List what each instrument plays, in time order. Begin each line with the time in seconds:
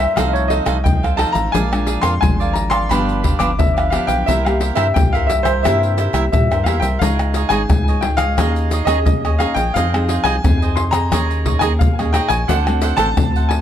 Already playing: nylon-string guitar G2 G3 A#3 E4, cavaquinho E5, grand piano E5
0.00 cavaquinho A#4 C5
0.16 analog synth bass C2, nylon-string guitar C3 F3 A3 D#4, cavaquinho D#4 A4 C5 F5, grand piano F5, pandeiro, tamborim, shaker, surdo
0.28 grand piano D#5
0.33 grand piano C#5, pandeiro, shaker
0.48 cavaquinho D#4 A4 C5 F5, grand piano D#5, pandeiro
0.65 analog synth bass C2, nylon-string guitar F3 A3 D#4, cavaquinho D#4 A4 C5 F5, pandeiro, tamborim, shaker
0.84 nylon-string guitar C3 F3 A3 D#4, grand piano G5, pandeiro, shaker, surdo
1.03 cavaquinho A4 C5 F5, pandeiro, tamborim, shaker
1.17 nylon-string guitar F3 A3 D#4, cavaquinho D#4 A4 C5 F5, grand piano A5, pandeiro, tamborim
1.32 analog synth bass A1, cavaquinho A4 C5 F5, grand piano A#5, pandeiro, shaker
1.52 analog synth bass A#1, nylon-string guitar A#2 F3 G#3 D4, cavaquinho G#4 A#4 D5 F5, grand piano G#5, pandeiro, shaker, surdo
1.72 nylon-string guitar F3 G#3 D4, pandeiro, tamborim, shaker
1.86 cavaquinho G#4 A#4 D5 F5, pandeiro, shaker
2.01 analog synth bass F2, cavaquinho G#4 A#4 D5 F5, grand piano C6, pandeiro, tamborim, shaker
2.21 analog synth bass G#1, nylon-string guitar F2 F3 G#3 D4, grand piano G#5, pandeiro, tamborim, shaker, surdo
2.40 cavaquinho A#4 D5 F5, pandeiro, shaker
2.53 grand piano A#5, pandeiro
2.70 cavaquinho A#4 D5 F5, grand piano C6, pandeiro, tamborim, shaker
2.89 analog synth bass G1, nylon-string guitar G2 F3 B3 D4, cavaquinho D4 G4 B4 F5, grand piano B5, pandeiro, tamborim, shaker, surdo
3.09 pandeiro, shaker
3.23 cavaquinho D4 G4 B4 F5, pandeiro, surdo
3.39 analog synth bass G1, nylon-string guitar F3 B3 D4, cavaquinho D4 G4 B4 F5, grand piano D6, pandeiro, tamborim, shaker
3.59 nylon-string guitar D3 F3 B3 D4, grand piano E5, pandeiro, shaker, surdo
3.77 cavaquinho G4 B4 F5, pandeiro, tamborim, shaker
3.90 nylon-string guitar F3 B3 D4, cavaquinho D4 G4 B4 F5, grand piano F5, pandeiro, tamborim
4.07 analog synth bass B1, cavaquinho G4 B4 F5, grand piano G5, pandeiro, shaker
4.26 analog synth bass C2, nylon-string guitar C3 A#3 E4 G4, cavaquinho E4 A#4 C5 E5, grand piano E5, pandeiro, shaker, surdo
4.45 nylon-string guitar A#3 G4, grand piano F5, pandeiro, tamborim, shaker
4.60 cavaquinho E4 A#4 C5 E5, pandeiro
4.75 analog synth bass G2, cavaquinho E4 A#4 C5 E5, grand piano E5, pandeiro, tamborim, shaker
4.94 analog synth bass C2, nylon-string guitar G2 A#3 E4 G4, grand piano G5, pandeiro, tamborim, shaker, surdo
5.13 cavaquinho A#4 C5 E5, grand piano F5, pandeiro, shaker
5.27 grand piano E5, pandeiro, shaker
5.43 cavaquinho A#4 C5 E5, grand piano C5, pandeiro, tamborim, shaker
5.63 analog synth bass G2, nylon-string guitar C3 A#3 E4 G4, cavaquinho E4 A#4 C5 E5, grand piano E5, pandeiro, tamborim, shaker, surdo
5.83 pandeiro, shaker
5.98 cavaquinho E4 A#4 C5 E5, pandeiro, shaker
6.13 analog synth bass C2, nylon-string guitar A#3 E4 G4, cavaquinho E4 A#4 C5 E5, pandeiro, tamborim, shaker
6.32 nylon-string guitar G2 A#3 E4 G4, analog synth bass A#2, grand piano E5, pandeiro, shaker, surdo
6.51 analog synth bass G2, cavaquinho A#4 C5 E5, pandeiro, tamborim, shaker
6.64 analog synth bass E2, nylon-string guitar A#3 E4 G4, cavaquinho E4 A#4 C5 E5, grand piano F5, pandeiro, tamborim
6.80 analog synth bass C2, cavaquinho A#4 C5 E5, grand piano G5, pandeiro, shaker
6.99 analog synth bass C#2, nylon-string guitar C#3 G#3 D#4 G#4, cavaquinho D#4 G#4 C#5, grand piano F5, pandeiro, shaker, surdo
7.03 cavaquinho D#5
7.19 pandeiro, tamborim, shaker
7.34 cavaquinho D#4 G#4 C#5 D#5, pandeiro, shaker
7.49 analog synth bass G#1, nylon-string guitar G#3 D#4 G#4, cavaquinho D#4 G#4 C#5 D#5, grand piano G#5, pandeiro, tamborim, shaker
7.70 analog synth bass C#2, nylon-string guitar G#2, pandeiro, tamborim, shaker, surdo
7.88 cavaquinho G#4 C#5 D#5, pandeiro, shaker
8.01 nylon-string guitar G#3 D#4 G#4, grand piano G5, pandeiro
8.17 cavaquinho G#4 C#5 D#5, grand piano F5, pandeiro, tamborim, shaker
8.38 analog synth bass D#2, nylon-string guitar D#3 A#3 C#4 G#4, cavaquinho D#4 G#4 C#5 D#5, pandeiro, tamborim, shaker, surdo
8.56 pandeiro, shaker
8.71 cavaquinho D#4 G#4 C#5 D#5, pandeiro, shaker
8.85 analog synth bass D#2, nylon-string guitar A#3 C#4 G#4, cavaquinho D#4 G#4 C#5 D#5, grand piano D#5, pandeiro, tamborim, shaker
9.06 nylon-string guitar A#2, grand piano D#5, pandeiro, shaker, surdo
9.25 cavaquinho G#4 C#5 D#5, pandeiro, tamborim, shaker
9.39 nylon-string guitar A#3 C#4 G#4, cavaquinho D#4 G#4 C#5 D#5, grand piano F5, pandeiro, tamborim, shaker
9.54 analog synth bass A#1, cavaquinho G#4 C#5 D#5, grand piano G5, pandeiro, shaker
9.74 analog synth bass F2, nylon-string guitar F3 C4 D#4 G#4, cavaquinho F4 G#4 C5 D#5, grand piano F5, pandeiro, shaker, surdo
9.94 nylon-string guitar C4 D#4 G#4, pandeiro, tamborim, shaker
10.08 cavaquinho F4 G#4 C5 D#5, pandeiro
10.24 analog synth bass C2, cavaquinho F4 G#4 C5 D#5, grand piano G#5, pandeiro, tamborim, shaker
10.44 analog synth bass F2, nylon-string guitar C3 C4 D#4 G#4, pandeiro, tamborim, shaker, surdo
10.62 cavaquinho G#4 C5 D#5, pandeiro, shaker
10.76 grand piano C6, pandeiro
10.91 cavaquinho G#4 C5 D#5, grand piano A#5, pandeiro, tamborim, shaker
11.12 analog synth bass D#2, nylon-string guitar D#3 A#3 C#4 G#4, cavaquinho D#4 G#4 C#5 D#5, pandeiro, tamborim, shaker, surdo
11.31 pandeiro, shaker
11.46 cavaquinho D#4 G#4 C#5 D#5, pandeiro, surdo
11.59 analog synth bass D#2, nylon-string guitar A#3 C#4 G#4, cavaquinho D#4 G#4 C#5 D#5, grand piano G#5, pandeiro, tamborim, shaker
11.79 nylon-string guitar A#2, grand piano F5, pandeiro, shaker, surdo
11.99 nylon-string guitar A#3 C#4 G#4, cavaquinho G#4 C#5 D#5, pandeiro, tamborim, shaker
12.13 nylon-string guitar A#3 C#4 G#4, cavaquinho D#4 G#4 C#5 D#5, grand piano G5, pandeiro, tamborim, shaker
12.28 analog synth bass A#1, cavaquinho G#4 C#5 D#5, grand piano G#5, pandeiro, shaker
12.48 analog synth bass D2, nylon-string guitar D3 A3 C4 F#4, cavaquinho D4 A4 C5 F#5, grand piano F#5, pandeiro, shaker, surdo
12.67 nylon-string guitar A3 C4 F#4, pandeiro, tamborim, shaker
12.82 cavaquinho D4 A4 C5 F#5, pandeiro, shaker
12.97 analog synth bass A1, cavaquinho D4 A4 C5 F#5, grand piano A5, pandeiro, tamborim, shaker
13.17 analog synth bass D2, nylon-string guitar A2 A3 C4 F#4, pandeiro, tamborim, shaker, surdo
13.36 cavaquinho A4 C5 F#5, pandeiro, shaker
13.49 grand piano G#5, pandeiro